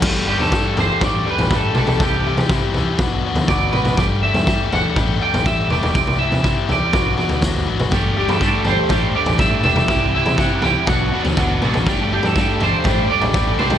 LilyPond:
<<
  \new Staff \with { instrumentName = "Clean electric guitar" } { \time 4/4 \key g \major \tempo 4 = 122 r8 g'16 a'8. c''8 d''8 b'8 a'8 a'8 | g'2 r4 d''8 b'8 | d''8 e''4 fis''4 g''8 e''8 d''8 | d''8 e''4 d''2 r8 |
r8 g'16 a'8. c''4 d''8 e''8 e''8~ | e''8 e''8 fis''8 g''8 fis''4. r8 | r8 g'16 a'8. c''4 d''4 c''8 | }
  \new Staff \with { instrumentName = "Distorted electric guitar" } { \time 4/4 \key g \major r1 | r1 | r1 | r1 |
<g a d' g'>8 <g a d' g'>8 <g a d' g'>8 <g a d' g'>8 <g a d' g'>8 <g a d' g'>8 <g a d' g'>8 <g a d' g'>8 | <c e g e' g'>8 <c e g e' g'>8 <c e g e' g'>8 <c e g e' g'>8 <b, fis b d' fis'>8 <b, fis b d' fis'>8 <b, fis b d' fis'>8 <b, fis b d' fis'>8 | <g a d' g'>8 <g a d' g'>8 <g a d' g'>8 <g a d' g'>8 <g a d' g'>8 <g a d' g'>8 <g a d' g'>8 <g a d' g'>8 | }
  \new Staff \with { instrumentName = "Overdriven electric guitar" } { \time 4/4 \key g \major <g a d' g'>8 <g a d' g'>8 <g a d' g'>8 <g a d' g'>8 <g a d' g'>8 <g a d' g'>8 <g a d' g'>8 <g a d' g'>8 | <c e g e' g'>8 <c e g e' g'>8 <c e g e' g'>8 <c e g e' g'>8 <b, fis b d' fis'>8 <b, fis b d' fis'>8 <b, fis b d' fis'>8 <b, fis b d' fis'>8 | <g a d' g'>8 <g a d' g'>8 <g a d' g'>8 <g a d' g'>8 <g a d' g'>8 <g a d' g'>8 <g a d' g'>8 <g a d' g'>8 | <c e g e' g'>8 <c e g e' g'>8 <c e g e' g'>8 <c e g e' g'>8 <b, fis b d' fis'>8 <b, fis b d' fis'>8 <b, fis b d' fis'>8 <b, fis b d' fis'>8 |
<g a d' g'>8 <g a d' g'>8 <g a d' g'>8 <g a d' g'>8 <g a d' g'>8 <g a d' g'>8 <g a d' g'>8 <g a d' g'>8 | <c e g e' g'>8 <c e g e' g'>8 <c e g e' g'>8 <c e g e' g'>8 <b, fis b d' fis'>8 <b, fis b d' fis'>8 <b, fis b d' fis'>8 <b, fis b d' fis'>8 | <g a d' g'>8 <g a d' g'>8 <g a d' g'>8 <g a d' g'>8 <g a d' g'>8 <g a d' g'>8 <g a d' g'>8 <g a d' g'>8 | }
  \new Staff \with { instrumentName = "Picked electric bass" } { \clef bass \time 4/4 \key g \major g,,8. g,8 r16 g,,16 r16 a,,8 r16 a,,8. b,,8 | c,8. c8 r16 c,16 r16 b,,8 r16 d,8. a,,8 | g,,8. g,8 r16 g,,16 r16 a,,8 r16 a,,8. e,,8 | c,8. c8 r16 c,16 r16 b,,8 r16 d,8. aes,,8 |
g,,8. g,8 r16 g,,16 r16 a,,8 r16 a,,8. e,,8 | c,8. c8 r16 c,16 r16 b,,8 r16 d,8. a,,8 | g,,8. g,8 r16 g,,16 r16 a,,8 r16 a,,8. b,,8 | }
  \new DrumStaff \with { instrumentName = "Drums" } \drummode { \time 4/4 <cymc bd tomfh>8. tomfh16 bd8 tomfh8 <bd tomfh>8. tomfh16 <bd tomfh>8 toml16 <tomfh toml>16 | <bd tomfh>8. tomfh16 bd8 tomfh8 <bd tomfh>8. tomfh16 <bd tomfh>8 toml16 <tomfh toml>16 | <bd tomfh>8. tomfh16 bd8 tomfh8 <bd tomfh>8. tomfh16 <bd tomfh>8 toml16 <tomfh toml>16 | <bd tomfh>16 toml8 tomfh16 bd8 tomfh8 <bd tomfh>8 tomfh16 tomfh16 <bd sn tomfh>16 tomfh8 <tomfh toml>16 |
<bd tomfh>8. tomfh16 bd8 tomfh8 <bd tomfh>8. tomfh16 <bd tomfh>8 toml16 <tomfh toml>16 | <bd tomfh>8. tomfh16 bd8 tomfh8 <bd tomfh>8. tomfh16 <bd tomfh>8 toml16 <tomfh toml>16 | <bd tomfh>8. tomfh16 bd8 tomfh8 <bd tomfh>8. tomfh16 <bd tomfh>8 toml16 <tomfh toml>16 | }
>>